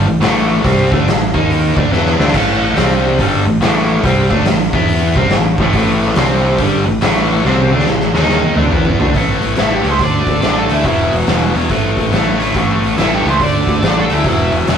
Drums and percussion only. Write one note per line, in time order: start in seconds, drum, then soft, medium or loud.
0.22 snare loud
0.22 open hi-hat medium
0.64 kick loud
0.64 open hi-hat soft
0.92 kick loud
0.92 snare soft
1.08 snare loud
1.08 open hi-hat medium
1.34 kick medium
1.50 open hi-hat soft
1.77 kick loud
1.93 snare medium
2.06 snare medium
2.20 snare medium
2.28 snare medium
2.34 kick loud
2.34 open hi-hat medium
2.34 crash medium
2.77 snare loud
2.77 open hi-hat medium
3.19 kick medium
3.19 open hi-hat medium
3.62 snare loud
3.62 open hi-hat medium
4.04 kick medium
4.04 open hi-hat medium
4.31 kick medium
4.31 snare soft
4.45 snare loud
4.45 open hi-hat medium
4.73 kick loud
4.88 open hi-hat medium
5.16 kick loud
5.30 snare loud
5.30 open hi-hat medium
5.58 kick loud
5.73 kick medium
5.73 open hi-hat medium
6.02 snare soft
6.15 snare loud
6.15 open hi-hat medium
6.58 kick loud
6.58 open hi-hat medium
7.01 snare loud
7.01 open hi-hat medium
7.45 snare medium
7.58 high tom medium
7.71 high tom medium
7.79 snare medium
7.87 snare medium
8.00 snare medium
8.15 snare medium
8.23 snare medium
8.30 snare medium
8.43 mid tom medium
8.56 mid tom medium
8.64 mid tom medium
8.71 floor tom loud
8.85 kick medium
9.00 floor tom loud
9.08 floor tom medium
9.14 kick medium
9.14 open hi-hat medium
9.42 open hi-hat soft
9.56 snare loud
9.56 open hi-hat medium
9.85 open hi-hat soft
9.99 kick loud
9.99 open hi-hat medium
10.27 kick medium
10.27 open hi-hat soft
10.42 snare loud
10.42 open hi-hat medium
10.69 open hi-hat medium
10.84 kick medium
10.84 open hi-hat medium
11.12 open hi-hat soft
11.27 snare loud
11.27 open hi-hat medium
11.55 open hi-hat medium
11.70 kick loud
11.70 open hi-hat medium
11.97 kick medium
11.97 open hi-hat soft
12.13 snare loud
12.13 open hi-hat medium
12.40 open hi-hat soft
12.55 kick medium
12.55 open hi-hat medium
12.84 open hi-hat soft
12.98 snare loud
12.98 open hi-hat medium
13.26 open hi-hat soft
13.40 kick medium
13.40 open hi-hat medium
13.67 kick medium
13.67 open hi-hat medium
13.83 snare loud
13.83 open hi-hat medium
14.10 open hi-hat medium
14.24 kick medium
14.24 open hi-hat medium
14.52 open hi-hat soft
14.61 snare soft
14.67 snare loud
14.67 open hi-hat medium